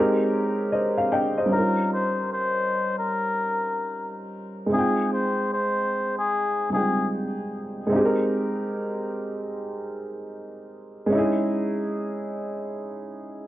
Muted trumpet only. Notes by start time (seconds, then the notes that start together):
1.53 A#4
1.93 C5
2.33 C5
2.98 A#4
4.73 G#4
5.13 C5
5.53 C5
6.18 G#4
6.73 G#4